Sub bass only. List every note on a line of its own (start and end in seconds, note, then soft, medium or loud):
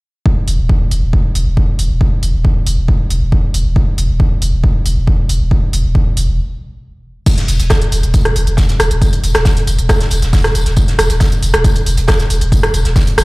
0.37 0.47 E1 medium
0.47 0.58 E1 loud
0.59 0.69 E1 medium
0.81 0.91 E1 medium
0.91 1.02 E1 medium
1.02 1.13 E1 medium
1.24 1.35 E1 medium
1.35 1.46 E1 medium
1.46 1.57 E1 medium
1.68 1.78 E1 medium
1.79 1.90 E1 medium
1.90 2.01 E1 medium
2.12 2.22 E1 medium
2.23 2.33 E1 loud
2.34 2.45 E1 medium
2.56 2.66 E1 medium
2.67 2.77 E1 loud
2.78 2.88 E1 medium
3.00 3.10 E1 medium
3.11 3.21 E1 loud
3.22 3.32 E1 medium
3.44 3.54 E1 medium
3.54 3.65 E1 loud
3.66 3.76 E1 medium
3.87 3.98 E1 medium
3.98 4.09 E1 loud
4.09 4.20 E1 medium
4.31 4.41 E1 medium
4.42 4.52 E1 loud
4.53 4.64 E1 medium
4.75 4.85 E1 medium
4.86 4.96 E1 loud
4.97 5.07 E1 medium
5.19 5.29 E1 medium
5.30 5.40 E1 medium
5.41 5.51 E1 medium
5.63 5.73 E1 medium
5.73 5.84 E1 loud
5.84 5.95 E1 medium
6.06 6.17 E1 medium
6.17 6.28 E1 loud
6.28 6.39 E1 medium
7.38 7.48 E1 medium
7.48 7.59 E1 loud
7.60 7.70 E1 medium
7.82 7.91 E1 medium
7.92 8.03 E1 medium
8.03 8.14 E1 medium
8.25 8.35 E1 medium
8.36 8.47 E1 loud
8.47 8.58 E1 medium
8.69 8.79 E1 medium
8.80 8.90 E1 loud
8.91 9.01 E1 medium
9.13 9.23 E1 medium
9.24 9.34 E1 loud
9.35 9.45 E1 medium
9.57 9.67 E1 medium
9.67 9.78 E1 medium
9.78 9.89 E1 medium
10.00 10.11 E1 medium
10.11 10.22 E1 loud
10.22 10.33 E1 medium
10.44 10.54 E1 medium
10.55 10.66 E1 loud
10.66 10.77 E1 medium
10.88 10.98 E1 medium
10.99 11.09 E1 loud
11.10 11.20 E1 medium
11.32 11.42 E1 medium
11.43 11.53 E1 loud
11.54 11.64 E1 medium
11.76 11.86 E1 medium
11.86 11.97 E1 loud
11.98 12.08 E1 medium
12.20 12.30 E1 medium
12.30 12.41 E1 loud
12.41 12.52 E1 medium
12.63 12.73 E1 medium
12.74 12.85 E1 loud
12.85 12.96 E1 medium
13.07 13.17 E1 medium
13.18 13.24 E1 loud